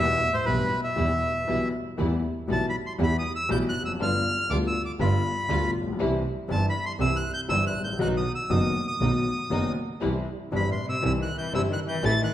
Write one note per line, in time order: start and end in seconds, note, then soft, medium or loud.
0.00 0.17 E2 medium
0.00 0.30 B2 medium
0.00 0.17 E3 medium
0.00 0.17 G3 medium
0.00 0.17 B3 medium
0.00 0.18 B3 medium
0.00 0.17 E4 medium
0.00 0.18 G4 medium
0.00 0.36 E5 loud
0.31 0.44 A2 medium
0.31 0.45 C5 medium
0.45 0.67 B1 medium
0.45 0.68 B1 medium
0.45 0.80 G2 medium
0.45 0.67 B2 medium
0.45 0.67 E3 medium
0.45 0.67 G3 medium
0.45 0.68 B3 medium
0.45 0.68 E4 medium
0.45 0.68 G4 medium
0.45 0.81 B4 medium
0.83 1.68 B2 medium
0.83 1.69 E5 medium
0.96 1.18 E2 medium
0.96 1.17 E3 medium
0.96 1.17 G3 medium
0.96 1.18 G3 medium
0.96 1.18 B3 medium
0.96 1.18 E4 medium
0.96 1.18 G4 medium
1.47 1.69 B1 medium
1.47 1.69 B2 medium
1.47 1.69 E3 medium
1.47 1.68 G3 medium
1.47 1.69 G3 medium
1.47 1.69 B3 medium
1.47 1.69 E4 medium
1.47 1.69 G4 medium
1.97 2.19 E2 medium
1.97 2.19 E3 medium
1.97 2.19 G3 medium
1.97 2.19 B3 medium
1.97 2.19 E4 medium
1.97 2.19 G4 medium
2.48 2.70 B1 medium
2.48 2.69 B2 medium
2.48 2.69 E3 medium
2.48 2.69 G3 medium
2.48 2.69 B3 medium
2.48 2.70 B3 medium
2.48 2.70 E4 medium
2.48 2.70 G4 medium
2.52 2.66 A5 medium
2.70 2.76 B5 medium
2.86 2.93 C6 medium
2.98 3.20 E2 medium
2.98 3.20 E3 medium
2.98 3.19 G3 medium
2.98 3.20 G3 medium
2.98 3.20 B3 medium
2.98 3.20 E4 medium
2.98 3.20 G4 medium
3.03 3.17 B5 medium
3.19 3.33 D#6 medium
3.36 3.50 E6 medium
3.49 3.70 B1 medium
3.49 3.70 B2 medium
3.49 3.70 E3 medium
3.49 3.70 G3 medium
3.49 3.70 B3 medium
3.49 3.70 E4 medium
3.49 3.70 G4 medium
3.49 3.58 G6 loud
3.69 3.83 F#6 medium
3.75 3.99 F1 medium
3.81 3.87 E2 soft
3.85 3.93 F2 medium
3.85 3.92 E6 medium
3.93 3.99 F#2 medium
3.99 4.20 G1 medium
3.99 4.21 G1 medium
3.99 4.21 G2 medium
3.99 4.21 D3 medium
3.99 4.20 G3 medium
3.99 4.21 G3 medium
3.99 4.20 B3 medium
3.99 4.21 B3 medium
3.99 4.20 F4 medium
3.99 4.21 F4 medium
3.99 4.52 F6 loud
4.50 4.70 D2 medium
4.50 4.71 D2 medium
4.50 4.71 D3 medium
4.50 4.71 G3 medium
4.50 4.71 B3 medium
4.50 4.71 F4 medium
4.50 4.58 D6 medium
4.67 4.82 E6 medium
4.85 4.92 D6 medium
4.99 5.20 G1 medium
4.99 5.20 G2 medium
4.99 5.20 D3 medium
4.99 5.20 G3 medium
4.99 5.20 B3 medium
4.99 5.21 B3 medium
4.99 5.20 F4 medium
4.99 5.71 B5 medium
5.48 5.70 D2 medium
5.48 5.70 D3 medium
5.48 5.70 G3 medium
5.48 5.70 B3 medium
5.48 5.70 F4 loud
5.48 5.70 F4 medium
5.75 5.99 A#1 medium
5.82 5.87 A1 soft
5.87 5.93 A#1 medium
5.93 5.99 B1 medium
5.98 6.20 C2 medium
5.98 6.20 C3 medium
5.98 6.20 E3 medium
5.98 6.20 G3 medium
5.98 6.20 C4 medium
5.98 6.21 C4 medium
5.98 6.20 E4 medium
5.98 6.21 G4 medium
6.48 6.70 G1 medium
6.48 6.71 G1 medium
6.48 6.70 G2 medium
6.48 6.70 E3 medium
6.48 6.70 G3 medium
6.48 6.70 C4 medium
6.48 6.70 E4 medium
6.48 6.70 G4 medium
6.48 6.66 A5 medium
6.70 6.85 B5 medium
6.86 6.93 C6 medium
6.99 7.20 C2 medium
6.99 7.20 C3 medium
6.99 7.20 E3 medium
6.99 7.20 G3 medium
6.99 7.20 C4 medium
6.99 7.20 E4 medium
6.99 7.20 G4 medium
6.99 7.17 E6 loud
7.16 7.32 F#6 medium
7.34 7.41 G6 loud
7.49 7.70 G1 medium
7.49 7.70 G2 medium
7.49 7.70 E3 medium
7.49 7.70 G3 medium
7.49 7.70 C4 medium
7.49 7.70 E4 medium
7.49 7.70 G4 medium
7.49 7.65 E6 loud
7.67 7.82 F#6 medium
7.76 7.99 A1 medium
7.80 7.87 G#1 soft
7.84 7.93 A1 medium
7.84 7.99 G6 medium
7.93 7.99 A#1 medium
7.98 8.20 B1 medium
7.98 8.21 B1 medium
7.98 8.20 B2 medium
7.98 8.20 D#3 medium
7.98 8.20 F#3 medium
7.98 8.21 F#3 medium
7.98 8.21 B3 medium
7.98 8.21 D#4 medium
7.98 8.21 F#4 medium
7.98 8.08 F#6 medium
8.17 8.32 D#6 medium
8.35 8.51 E6 medium
8.49 8.71 F#1 medium
8.49 8.71 F#2 medium
8.49 8.71 D#3 medium
8.49 8.71 F#3 medium
8.49 8.71 B3 medium
8.49 8.71 D#4 medium
8.49 8.71 F#4 medium
8.49 8.86 D#6 medium
8.88 9.72 D#6 medium
9.00 9.22 B1 medium
9.00 9.22 B2 medium
9.00 9.22 D#3 medium
9.00 9.22 F#3 medium
9.00 9.22 B3 medium
9.00 9.22 D#4 medium
9.00 9.22 F#4 medium
9.50 9.72 F#1 medium
9.50 9.72 F#2 medium
9.50 9.72 D#3 medium
9.50 9.72 F#3 medium
9.50 9.72 B3 medium
9.50 9.72 D#4 medium
9.50 9.72 F#4 medium
10.01 10.23 C2 medium
10.01 10.23 C3 medium
10.01 10.23 E3 medium
10.01 10.22 G3 medium
10.01 10.23 G3 medium
10.01 10.23 C4 medium
10.01 10.23 E4 medium
10.01 10.23 G4 medium
10.51 10.73 G1 medium
10.51 10.74 G1 medium
10.51 10.68 G2 medium
10.51 10.73 G2 medium
10.51 10.73 E3 medium
10.51 10.73 G3 medium
10.51 10.73 C4 medium
10.51 10.73 E4 medium
10.51 10.74 G4 medium
10.56 10.70 B5 medium
10.68 10.84 A2 medium
10.68 10.86 C6 medium
10.85 11.00 C3 medium
10.89 11.04 E6 medium
11.00 11.24 C2 medium
11.00 11.08 C3 medium
11.00 11.24 C3 medium
11.00 11.24 E3 medium
11.00 11.24 G3 medium
11.00 11.24 C4 medium
11.00 11.24 E4 medium
11.00 11.24 G4 medium
11.06 11.13 E6 medium
11.18 11.34 D#3 medium
11.22 11.37 F#6 medium
11.36 11.52 E3 medium
11.36 11.53 G6 medium
11.53 11.74 G1 medium
11.53 11.75 G1 medium
11.53 11.74 G2 medium
11.53 11.61 C3 medium
11.53 11.74 E3 medium
11.53 11.74 G3 medium
11.53 11.75 G3 medium
11.53 11.74 C4 medium
11.53 11.75 C4 medium
11.53 11.74 E4 medium
11.53 11.75 G4 medium
11.53 11.62 E6 loud
11.71 11.78 D#3 medium
11.71 11.80 F#6 medium
11.87 12.02 E3 medium
11.87 12.05 G6 medium
12.02 12.24 A1 medium
12.02 12.24 A2 medium
12.02 12.24 E3 medium
12.02 12.19 E3 medium
12.02 12.24 A3 medium
12.02 12.24 C4 medium
12.02 12.24 E4 loud
12.02 12.24 A4 medium
12.02 12.21 A6 loud
12.21 12.34 D#3 medium
12.21 12.34 F#6 medium